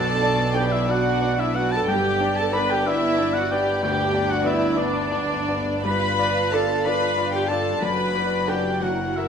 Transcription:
Already playing: double bass section B1, grand piano F#2 B3 D4 D5, cello section B2, french horn section B3 D4, viola section A4, violin section D5 A5, oboe A5
0.22 grand piano D4 D5
0.54 grand piano B3 D4 D5, viola section G4, violin section G5, oboe G5
0.70 violin section E5, oboe E5
0.74 viola section E4
0.87 french horn section B3 D4, grand piano B3 D4 D5, viola section F#4, violin section F#5, oboe F#5
1.22 grand piano D4 D5
1.38 viola section E4, violin section E5, oboe E5
1.54 grand piano B3 D4 D5, viola section F#4, violin section F#5, oboe F#5
1.72 viola section A4, oboe A5, violin section A5
1.87 double bass section G1, grand piano G2, cello section G2, french horn section B3 D4, viola section G4, violin section D5 G5, oboe G5
2.20 grand piano D4 D5
2.36 viola section A4, oboe A5, violin section A5
2.52 grand piano B3 D4 D5, viola section B4, oboe B5, violin section B5
2.69 violin section G5, oboe G5
2.73 viola section G4
2.85 grand piano B3 D4 D5, viola section E4, oboe E5, violin section E5
3.18 grand piano D4 D5
3.34 oboe F#5, violin section F#5
3.38 viola section F#4
3.51 grand piano B3 D4 D5, viola section G4, violin section G5, oboe G5
3.82 grand piano D2, french horn section B3 D4, violin section G5, oboe G5
3.87 viola section G4
4.14 grand piano D4 D5
4.29 viola section F#4, violin section F#5, oboe F#5
4.44 grand piano B3 D4 D5, viola section E4, violin section E5, oboe E5
4.76 grand piano B3 D4 D5, french horn section B3 D4, viola section D4, violin section D5, oboe D5
5.12 grand piano D4 D5
5.33 french horn section D4
5.48 grand piano B3 D4 D5
5.85 grand piano G2, french horn section D4 F4, viola section B4, violin section F5 B5, oboe B5
6.19 grand piano F4 D5
6.53 grand piano D4 F4 D5, viola section A4, violin section A5, oboe A5
6.83 french horn section D4 F4, grand piano D4 F4 D5, viola section B4, violin section B5, oboe B5
7.17 grand piano F4 D5
7.32 viola section G4, violin section G5, oboe G5
7.47 grand piano D4 F4, viola section A4, violin section A5, oboe A5
7.51 grand piano D5
7.80 cello section F#2, grand piano F#2, french horn section D4 F#4, viola section B4, violin section D5 B5
7.84 double bass section F#1, oboe B5
8.15 grand piano F#4 B4
8.47 grand piano D4 F#4 B4, viola section G4, violin section G5, oboe G5
8.82 grand piano F#2, french horn section A#3 E4, viola section F#4, violin section A#4 F#5, oboe F#5
9.16 viola section E4, grand piano F#4 A#4, oboe E5, violin section E5

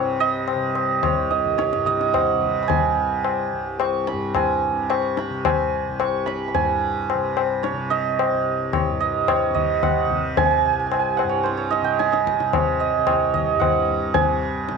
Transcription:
Already playing: tanpura C2 G2 C3, santur C#5 D#5 F#5 G#5
0.20 santur D#5
0.48 tabla na
0.55 tanpura C3
0.75 tabla na
1.03 santur C#5, tabla na, tabla ge
1.14 tanpura C2
1.31 santur D#5, tabla te
1.45 tabla ge
1.58 santur C#5, tabla te
1.73 tanpura G2, tabla te
1.86 santur D#5, tabla ke
2.01 tabla te
2.14 santur F#5, tabla na, tabla ge
2.34 tanpura C3
2.42 tabla ge
2.63 santur B5
2.68 santur G#5, tabla tin, tabla ge
2.93 tanpura C3
3.25 tabla na
3.53 tanpura C2
3.80 santur C#6, tabla na
4.07 santur B5, tabla te
4.13 tanpura G2
4.35 santur G#5, tabla na, tabla ge
4.71 tanpura C3
4.90 santur C#6, tabla na
5.17 santur B5, tabla te
5.30 tanpura C3
5.45 santur G#5, tabla na, tabla ge
5.89 tanpura C2
6.00 santur C#6, tabla na
6.26 santur B5, tabla te
6.48 santur B5
6.54 tanpura G2, santur G#5, tabla tin, tabla ge
7.10 tabla na
7.14 tanpura C3
7.37 tabla na
7.63 santur C#5, tabla te
7.73 tanpura C3
7.90 santur D#5, tabla te
8.19 tabla na
8.32 tanpura C2
8.73 santur C#5, tabla na, tabla ge
8.90 tanpura G2
9.00 santur D#5
9.28 santur C#5, tabla na, tabla ge
9.49 tanpura C3
9.54 santur D#5, tabla ge
9.83 santur F#5, tabla na, tabla ge
10.06 tanpura C3
10.10 tabla ge
10.37 santur G#5, tabla tin, tabla ge
10.45 santur G#5
10.51 santur G#5
10.58 santur G#5
10.65 tanpura C2, santur G#5
10.73 santur G#5
10.79 santur G#5
10.87 santur G#5
10.92 santur G#5, tabla na
10.99 santur G#5
11.17 santur F#5, tabla na
11.24 tanpura G2
11.29 santur C#5
11.43 santur C5, tabla te
11.57 santur C#5
11.71 santur D#5, tabla te
11.82 tanpura C3, santur G5
11.99 santur G#5, tabla te
12.12 santur D#5, tabla te
12.27 tabla ke
12.40 tanpura C3, tabla te
12.53 santur C#5, tabla na, tabla ge
12.80 santur D#5
12.97 tanpura C2
13.07 santur C#5, tabla na, tabla ge
13.34 santur D#5, tabla ge
13.56 tanpura G2, santur F#5
13.62 tabla na, tabla ge
13.88 tabla ge
14.13 tanpura C3, santur G#5, tabla tin, tabla ge
14.69 tanpura C3, tabla te

